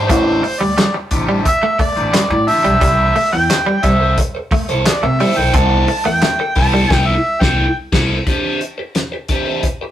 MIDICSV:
0, 0, Header, 1, 9, 480
1, 0, Start_track
1, 0, Tempo, 681044
1, 68, Time_signature, 4, 2, 24, 8
1, 6987, End_track
2, 0, Start_track
2, 0, Title_t, "Harmonica"
2, 0, Program_c, 0, 22
2, 49, Note_on_c, 0, 72, 103
2, 418, Note_on_c, 0, 74, 78
2, 428, Note_off_c, 0, 72, 0
2, 662, Note_off_c, 0, 74, 0
2, 1028, Note_on_c, 0, 76, 109
2, 1251, Note_off_c, 0, 76, 0
2, 1264, Note_on_c, 0, 74, 84
2, 1717, Note_off_c, 0, 74, 0
2, 1742, Note_on_c, 0, 76, 110
2, 2315, Note_off_c, 0, 76, 0
2, 2343, Note_on_c, 0, 79, 102
2, 2704, Note_on_c, 0, 76, 87
2, 2714, Note_off_c, 0, 79, 0
2, 2944, Note_off_c, 0, 76, 0
2, 3437, Note_on_c, 0, 74, 87
2, 3551, Note_on_c, 0, 76, 99
2, 3561, Note_off_c, 0, 74, 0
2, 3789, Note_on_c, 0, 79, 103
2, 3800, Note_off_c, 0, 76, 0
2, 3904, Note_off_c, 0, 79, 0
2, 3908, Note_on_c, 0, 81, 120
2, 4241, Note_off_c, 0, 81, 0
2, 4268, Note_on_c, 0, 79, 98
2, 4601, Note_off_c, 0, 79, 0
2, 4626, Note_on_c, 0, 81, 107
2, 4894, Note_off_c, 0, 81, 0
2, 4894, Note_on_c, 0, 79, 107
2, 4982, Note_on_c, 0, 76, 99
2, 4993, Note_off_c, 0, 79, 0
2, 5225, Note_on_c, 0, 79, 94
2, 5236, Note_off_c, 0, 76, 0
2, 5465, Note_off_c, 0, 79, 0
2, 6987, End_track
3, 0, Start_track
3, 0, Title_t, "Overdriven electric guitar"
3, 0, Program_c, 1, 29
3, 67, Note_on_c, 1, 61, 92
3, 75, Note_on_c, 1, 66, 109
3, 81, Note_on_c, 1, 71, 108
3, 159, Note_off_c, 1, 61, 0
3, 159, Note_on_c, 1, 62, 92
3, 167, Note_off_c, 1, 66, 0
3, 167, Note_on_c, 1, 67, 109
3, 172, Note_off_c, 1, 71, 0
3, 172, Note_on_c, 1, 72, 108
3, 288, Note_off_c, 1, 62, 0
3, 292, Note_off_c, 1, 67, 0
3, 295, Note_off_c, 1, 72, 0
3, 783, Note_on_c, 1, 62, 68
3, 790, Note_on_c, 1, 67, 78
3, 796, Note_on_c, 1, 72, 67
3, 898, Note_off_c, 1, 62, 0
3, 898, Note_off_c, 1, 72, 0
3, 901, Note_off_c, 1, 67, 0
3, 906, Note_on_c, 1, 72, 63
3, 913, Note_on_c, 1, 67, 54
3, 917, Note_on_c, 1, 62, 56
3, 1017, Note_off_c, 1, 62, 0
3, 1019, Note_off_c, 1, 72, 0
3, 1023, Note_off_c, 1, 67, 0
3, 1383, Note_on_c, 1, 72, 84
3, 1390, Note_on_c, 1, 67, 66
3, 1395, Note_on_c, 1, 62, 65
3, 1494, Note_off_c, 1, 62, 0
3, 1498, Note_off_c, 1, 67, 0
3, 1504, Note_off_c, 1, 72, 0
3, 1742, Note_on_c, 1, 62, 64
3, 1749, Note_on_c, 1, 67, 79
3, 1754, Note_on_c, 1, 72, 74
3, 1857, Note_off_c, 1, 62, 0
3, 1858, Note_off_c, 1, 72, 0
3, 1860, Note_off_c, 1, 67, 0
3, 1866, Note_on_c, 1, 72, 68
3, 1873, Note_on_c, 1, 67, 59
3, 1879, Note_on_c, 1, 62, 57
3, 1979, Note_off_c, 1, 72, 0
3, 1981, Note_off_c, 1, 62, 0
3, 1982, Note_off_c, 1, 67, 0
3, 1984, Note_on_c, 1, 64, 91
3, 1991, Note_on_c, 1, 69, 105
3, 1996, Note_on_c, 1, 72, 102
3, 2206, Note_off_c, 1, 64, 0
3, 2209, Note_off_c, 1, 69, 0
3, 2211, Note_off_c, 1, 72, 0
3, 2699, Note_on_c, 1, 64, 60
3, 2707, Note_on_c, 1, 69, 63
3, 2713, Note_on_c, 1, 72, 69
3, 2815, Note_off_c, 1, 64, 0
3, 2815, Note_off_c, 1, 72, 0
3, 2819, Note_off_c, 1, 69, 0
3, 2824, Note_on_c, 1, 72, 67
3, 2829, Note_on_c, 1, 69, 54
3, 2836, Note_on_c, 1, 64, 57
3, 2937, Note_off_c, 1, 72, 0
3, 2940, Note_off_c, 1, 64, 0
3, 2940, Note_off_c, 1, 69, 0
3, 3305, Note_on_c, 1, 72, 80
3, 3313, Note_on_c, 1, 69, 75
3, 3319, Note_on_c, 1, 64, 74
3, 3420, Note_off_c, 1, 64, 0
3, 3423, Note_off_c, 1, 69, 0
3, 3428, Note_off_c, 1, 72, 0
3, 3668, Note_on_c, 1, 64, 70
3, 3674, Note_on_c, 1, 69, 78
3, 3679, Note_on_c, 1, 72, 81
3, 3779, Note_off_c, 1, 64, 0
3, 3780, Note_off_c, 1, 72, 0
3, 3782, Note_off_c, 1, 69, 0
3, 3789, Note_on_c, 1, 72, 68
3, 3797, Note_on_c, 1, 69, 61
3, 3800, Note_on_c, 1, 64, 49
3, 3899, Note_off_c, 1, 64, 0
3, 3899, Note_off_c, 1, 72, 0
3, 3903, Note_off_c, 1, 69, 0
3, 3907, Note_on_c, 1, 64, 106
3, 3915, Note_on_c, 1, 69, 105
3, 3922, Note_on_c, 1, 72, 110
3, 4126, Note_off_c, 1, 64, 0
3, 4130, Note_off_c, 1, 69, 0
3, 4134, Note_off_c, 1, 72, 0
3, 4621, Note_on_c, 1, 64, 59
3, 4631, Note_on_c, 1, 69, 62
3, 4634, Note_on_c, 1, 72, 66
3, 4735, Note_off_c, 1, 72, 0
3, 4736, Note_off_c, 1, 64, 0
3, 4740, Note_off_c, 1, 69, 0
3, 4744, Note_on_c, 1, 72, 70
3, 4750, Note_on_c, 1, 69, 68
3, 4755, Note_on_c, 1, 64, 55
3, 4852, Note_off_c, 1, 72, 0
3, 4858, Note_off_c, 1, 69, 0
3, 4861, Note_on_c, 1, 72, 113
3, 4863, Note_off_c, 1, 64, 0
3, 4866, Note_on_c, 1, 69, 105
3, 4871, Note_on_c, 1, 64, 111
3, 5026, Note_off_c, 1, 72, 0
3, 5029, Note_off_c, 1, 69, 0
3, 5032, Note_off_c, 1, 64, 0
3, 5220, Note_on_c, 1, 72, 98
3, 5227, Note_on_c, 1, 69, 92
3, 5231, Note_on_c, 1, 64, 106
3, 5385, Note_off_c, 1, 72, 0
3, 5389, Note_off_c, 1, 69, 0
3, 5391, Note_off_c, 1, 64, 0
3, 5585, Note_on_c, 1, 64, 113
3, 5592, Note_on_c, 1, 69, 108
3, 5597, Note_on_c, 1, 72, 99
3, 5749, Note_off_c, 1, 64, 0
3, 5752, Note_off_c, 1, 69, 0
3, 5755, Note_off_c, 1, 72, 0
3, 5826, Note_on_c, 1, 62, 86
3, 5833, Note_on_c, 1, 67, 80
3, 5839, Note_on_c, 1, 72, 101
3, 6047, Note_off_c, 1, 62, 0
3, 6051, Note_off_c, 1, 67, 0
3, 6054, Note_off_c, 1, 72, 0
3, 6548, Note_on_c, 1, 62, 53
3, 6556, Note_on_c, 1, 67, 55
3, 6561, Note_on_c, 1, 72, 61
3, 6661, Note_off_c, 1, 62, 0
3, 6664, Note_off_c, 1, 72, 0
3, 6665, Note_off_c, 1, 67, 0
3, 6673, Note_on_c, 1, 72, 68
3, 6680, Note_on_c, 1, 67, 56
3, 6684, Note_on_c, 1, 62, 54
3, 6783, Note_off_c, 1, 72, 0
3, 6785, Note_off_c, 1, 62, 0
3, 6787, Note_off_c, 1, 67, 0
3, 6987, End_track
4, 0, Start_track
4, 0, Title_t, "Clean electric guitar"
4, 0, Program_c, 2, 27
4, 67, Note_on_c, 2, 57, 95
4, 140, Note_off_c, 2, 57, 0
4, 427, Note_on_c, 2, 55, 80
4, 501, Note_off_c, 2, 55, 0
4, 547, Note_on_c, 2, 55, 84
4, 621, Note_off_c, 2, 55, 0
4, 906, Note_on_c, 2, 55, 71
4, 980, Note_off_c, 2, 55, 0
4, 1148, Note_on_c, 2, 57, 96
4, 1221, Note_off_c, 2, 57, 0
4, 1265, Note_on_c, 2, 57, 86
4, 1339, Note_off_c, 2, 57, 0
4, 1504, Note_on_c, 2, 55, 79
4, 1578, Note_off_c, 2, 55, 0
4, 1864, Note_on_c, 2, 55, 83
4, 1938, Note_off_c, 2, 55, 0
4, 1985, Note_on_c, 2, 55, 91
4, 2059, Note_off_c, 2, 55, 0
4, 2225, Note_on_c, 2, 57, 67
4, 2298, Note_off_c, 2, 57, 0
4, 2583, Note_on_c, 2, 55, 88
4, 2657, Note_off_c, 2, 55, 0
4, 2705, Note_on_c, 2, 55, 74
4, 2779, Note_off_c, 2, 55, 0
4, 3186, Note_on_c, 2, 57, 86
4, 3259, Note_off_c, 2, 57, 0
4, 3545, Note_on_c, 2, 57, 72
4, 3619, Note_off_c, 2, 57, 0
4, 3668, Note_on_c, 2, 55, 76
4, 3741, Note_off_c, 2, 55, 0
4, 3907, Note_on_c, 2, 60, 93
4, 3979, Note_off_c, 2, 60, 0
4, 4266, Note_on_c, 2, 57, 80
4, 4339, Note_off_c, 2, 57, 0
4, 4387, Note_on_c, 2, 57, 84
4, 4460, Note_off_c, 2, 57, 0
4, 4747, Note_on_c, 2, 55, 78
4, 4820, Note_off_c, 2, 55, 0
4, 6987, End_track
5, 0, Start_track
5, 0, Title_t, "Upright bass"
5, 0, Program_c, 3, 32
5, 66, Note_on_c, 3, 33, 115
5, 271, Note_off_c, 3, 33, 0
5, 429, Note_on_c, 3, 38, 91
5, 530, Note_off_c, 3, 38, 0
5, 785, Note_on_c, 3, 33, 85
5, 990, Note_off_c, 3, 33, 0
5, 1385, Note_on_c, 3, 33, 84
5, 1487, Note_off_c, 3, 33, 0
5, 1624, Note_on_c, 3, 45, 116
5, 1727, Note_off_c, 3, 45, 0
5, 1866, Note_on_c, 3, 35, 91
5, 1968, Note_off_c, 3, 35, 0
5, 1982, Note_on_c, 3, 36, 98
5, 2187, Note_off_c, 3, 36, 0
5, 2346, Note_on_c, 3, 40, 99
5, 2448, Note_off_c, 3, 40, 0
5, 2704, Note_on_c, 3, 36, 110
5, 2908, Note_off_c, 3, 36, 0
5, 3306, Note_on_c, 3, 36, 89
5, 3407, Note_off_c, 3, 36, 0
5, 3547, Note_on_c, 3, 48, 111
5, 3648, Note_off_c, 3, 48, 0
5, 3791, Note_on_c, 3, 35, 93
5, 3890, Note_off_c, 3, 35, 0
5, 3902, Note_on_c, 3, 36, 118
5, 4107, Note_off_c, 3, 36, 0
5, 4268, Note_on_c, 3, 40, 103
5, 4368, Note_off_c, 3, 40, 0
5, 4623, Note_on_c, 3, 36, 100
5, 4828, Note_off_c, 3, 36, 0
5, 4864, Note_on_c, 3, 36, 100
5, 5027, Note_off_c, 3, 36, 0
5, 5226, Note_on_c, 3, 36, 96
5, 5389, Note_off_c, 3, 36, 0
5, 5585, Note_on_c, 3, 36, 98
5, 5749, Note_off_c, 3, 36, 0
5, 6987, End_track
6, 0, Start_track
6, 0, Title_t, "Muted clean electric guitar strokes"
6, 305, Note_on_c, 9, 29, 47
6, 376, Note_off_c, 9, 29, 0
6, 666, Note_on_c, 9, 29, 46
6, 736, Note_off_c, 9, 29, 0
6, 1028, Note_on_c, 9, 29, 43
6, 1099, Note_off_c, 9, 29, 0
6, 1625, Note_on_c, 9, 29, 46
6, 1696, Note_off_c, 9, 29, 0
6, 2346, Note_on_c, 9, 29, 43
6, 2417, Note_off_c, 9, 29, 0
6, 2466, Note_on_c, 9, 29, 50
6, 2536, Note_off_c, 9, 29, 0
6, 3425, Note_on_c, 9, 29, 46
6, 3496, Note_off_c, 9, 29, 0
6, 4147, Note_on_c, 9, 29, 51
6, 4218, Note_off_c, 9, 29, 0
6, 4510, Note_on_c, 9, 29, 48
6, 4580, Note_off_c, 9, 29, 0
6, 6987, End_track
7, 0, Start_track
7, 0, Title_t, "Muted overdriven electric guitar strokes"
7, 428, Note_on_c, 9, 29, 40
7, 499, Note_off_c, 9, 29, 0
7, 545, Note_on_c, 9, 29, 44
7, 616, Note_off_c, 9, 29, 0
7, 664, Note_on_c, 9, 29, 46
7, 735, Note_off_c, 9, 29, 0
7, 1025, Note_on_c, 9, 29, 43
7, 1096, Note_off_c, 9, 29, 0
7, 1144, Note_on_c, 9, 29, 51
7, 1214, Note_off_c, 9, 29, 0
7, 1503, Note_on_c, 9, 29, 55
7, 1573, Note_off_c, 9, 29, 0
7, 1627, Note_on_c, 9, 29, 49
7, 1698, Note_off_c, 9, 29, 0
7, 2343, Note_on_c, 9, 29, 41
7, 2414, Note_off_c, 9, 29, 0
7, 2465, Note_on_c, 9, 29, 42
7, 2536, Note_off_c, 9, 29, 0
7, 2581, Note_on_c, 9, 29, 45
7, 2651, Note_off_c, 9, 29, 0
7, 2949, Note_on_c, 9, 29, 44
7, 3019, Note_off_c, 9, 29, 0
7, 3064, Note_on_c, 9, 29, 41
7, 3134, Note_off_c, 9, 29, 0
7, 3428, Note_on_c, 9, 29, 33
7, 3499, Note_off_c, 9, 29, 0
7, 3548, Note_on_c, 9, 29, 46
7, 3618, Note_off_c, 9, 29, 0
7, 4266, Note_on_c, 9, 29, 46
7, 4336, Note_off_c, 9, 29, 0
7, 4386, Note_on_c, 9, 29, 38
7, 4457, Note_off_c, 9, 29, 0
7, 4505, Note_on_c, 9, 29, 50
7, 4575, Note_off_c, 9, 29, 0
7, 6187, Note_on_c, 9, 29, 39
7, 6257, Note_off_c, 9, 29, 0
7, 6308, Note_on_c, 9, 29, 38
7, 6379, Note_off_c, 9, 29, 0
7, 6428, Note_on_c, 9, 29, 35
7, 6498, Note_off_c, 9, 29, 0
7, 6793, Note_on_c, 9, 29, 44
7, 6864, Note_off_c, 9, 29, 0
7, 6916, Note_on_c, 9, 29, 45
7, 6987, Note_off_c, 9, 29, 0
7, 6987, End_track
8, 0, Start_track
8, 0, Title_t, "Muted upright bass strokes"
8, 1262, Note_on_c, 9, 29, 43
8, 1332, Note_off_c, 9, 29, 0
8, 3179, Note_on_c, 9, 29, 42
8, 3249, Note_off_c, 9, 29, 0
8, 6987, End_track
9, 0, Start_track
9, 0, Title_t, "Drums"
9, 67, Note_on_c, 9, 36, 122
9, 68, Note_on_c, 9, 42, 107
9, 137, Note_off_c, 9, 36, 0
9, 139, Note_off_c, 9, 42, 0
9, 309, Note_on_c, 9, 46, 94
9, 379, Note_off_c, 9, 46, 0
9, 548, Note_on_c, 9, 42, 84
9, 554, Note_on_c, 9, 38, 114
9, 554, Note_on_c, 9, 39, 83
9, 619, Note_off_c, 9, 42, 0
9, 625, Note_off_c, 9, 38, 0
9, 625, Note_off_c, 9, 39, 0
9, 781, Note_on_c, 9, 42, 97
9, 786, Note_on_c, 9, 36, 76
9, 852, Note_off_c, 9, 42, 0
9, 856, Note_off_c, 9, 36, 0
9, 1025, Note_on_c, 9, 42, 96
9, 1027, Note_on_c, 9, 36, 89
9, 1096, Note_off_c, 9, 42, 0
9, 1097, Note_off_c, 9, 36, 0
9, 1263, Note_on_c, 9, 36, 96
9, 1264, Note_on_c, 9, 46, 60
9, 1333, Note_off_c, 9, 36, 0
9, 1334, Note_off_c, 9, 46, 0
9, 1389, Note_on_c, 9, 42, 46
9, 1460, Note_off_c, 9, 42, 0
9, 1507, Note_on_c, 9, 42, 103
9, 1511, Note_on_c, 9, 38, 119
9, 1511, Note_on_c, 9, 39, 101
9, 1578, Note_off_c, 9, 42, 0
9, 1582, Note_off_c, 9, 38, 0
9, 1582, Note_off_c, 9, 39, 0
9, 1747, Note_on_c, 9, 46, 83
9, 1818, Note_off_c, 9, 46, 0
9, 1865, Note_on_c, 9, 42, 52
9, 1935, Note_off_c, 9, 42, 0
9, 1982, Note_on_c, 9, 42, 103
9, 1983, Note_on_c, 9, 36, 118
9, 2053, Note_off_c, 9, 42, 0
9, 2054, Note_off_c, 9, 36, 0
9, 2225, Note_on_c, 9, 46, 80
9, 2295, Note_off_c, 9, 46, 0
9, 2466, Note_on_c, 9, 42, 92
9, 2472, Note_on_c, 9, 38, 97
9, 2472, Note_on_c, 9, 39, 84
9, 2536, Note_off_c, 9, 42, 0
9, 2542, Note_off_c, 9, 38, 0
9, 2542, Note_off_c, 9, 39, 0
9, 2701, Note_on_c, 9, 42, 89
9, 2704, Note_on_c, 9, 36, 83
9, 2771, Note_off_c, 9, 42, 0
9, 2775, Note_off_c, 9, 36, 0
9, 2943, Note_on_c, 9, 42, 108
9, 2945, Note_on_c, 9, 36, 88
9, 3014, Note_off_c, 9, 42, 0
9, 3015, Note_off_c, 9, 36, 0
9, 3181, Note_on_c, 9, 36, 108
9, 3181, Note_on_c, 9, 46, 61
9, 3251, Note_off_c, 9, 36, 0
9, 3252, Note_off_c, 9, 46, 0
9, 3305, Note_on_c, 9, 42, 47
9, 3375, Note_off_c, 9, 42, 0
9, 3424, Note_on_c, 9, 42, 105
9, 3428, Note_on_c, 9, 38, 122
9, 3428, Note_on_c, 9, 39, 108
9, 3494, Note_off_c, 9, 42, 0
9, 3498, Note_off_c, 9, 38, 0
9, 3498, Note_off_c, 9, 39, 0
9, 3664, Note_on_c, 9, 46, 80
9, 3734, Note_off_c, 9, 46, 0
9, 3901, Note_on_c, 9, 42, 91
9, 3903, Note_on_c, 9, 36, 120
9, 3972, Note_off_c, 9, 42, 0
9, 3974, Note_off_c, 9, 36, 0
9, 4143, Note_on_c, 9, 46, 96
9, 4214, Note_off_c, 9, 46, 0
9, 4381, Note_on_c, 9, 42, 91
9, 4387, Note_on_c, 9, 38, 108
9, 4387, Note_on_c, 9, 39, 85
9, 4452, Note_off_c, 9, 42, 0
9, 4458, Note_off_c, 9, 38, 0
9, 4458, Note_off_c, 9, 39, 0
9, 4619, Note_on_c, 9, 46, 85
9, 4625, Note_on_c, 9, 36, 89
9, 4689, Note_off_c, 9, 46, 0
9, 4696, Note_off_c, 9, 36, 0
9, 4864, Note_on_c, 9, 49, 75
9, 4865, Note_on_c, 9, 36, 105
9, 4870, Note_on_c, 9, 38, 111
9, 4935, Note_off_c, 9, 49, 0
9, 4936, Note_off_c, 9, 36, 0
9, 4941, Note_off_c, 9, 38, 0
9, 5225, Note_on_c, 9, 36, 107
9, 5229, Note_on_c, 9, 38, 112
9, 5296, Note_off_c, 9, 36, 0
9, 5300, Note_off_c, 9, 38, 0
9, 5584, Note_on_c, 9, 49, 86
9, 5586, Note_on_c, 9, 36, 107
9, 5590, Note_on_c, 9, 38, 115
9, 5654, Note_off_c, 9, 49, 0
9, 5656, Note_off_c, 9, 36, 0
9, 5661, Note_off_c, 9, 38, 0
9, 5827, Note_on_c, 9, 36, 97
9, 5827, Note_on_c, 9, 42, 88
9, 5897, Note_off_c, 9, 36, 0
9, 5897, Note_off_c, 9, 42, 0
9, 6067, Note_on_c, 9, 42, 71
9, 6138, Note_off_c, 9, 42, 0
9, 6308, Note_on_c, 9, 42, 88
9, 6314, Note_on_c, 9, 38, 95
9, 6378, Note_off_c, 9, 42, 0
9, 6384, Note_off_c, 9, 38, 0
9, 6544, Note_on_c, 9, 42, 85
9, 6548, Note_on_c, 9, 36, 81
9, 6614, Note_off_c, 9, 42, 0
9, 6619, Note_off_c, 9, 36, 0
9, 6787, Note_on_c, 9, 42, 80
9, 6789, Note_on_c, 9, 36, 78
9, 6857, Note_off_c, 9, 42, 0
9, 6859, Note_off_c, 9, 36, 0
9, 6987, End_track
0, 0, End_of_file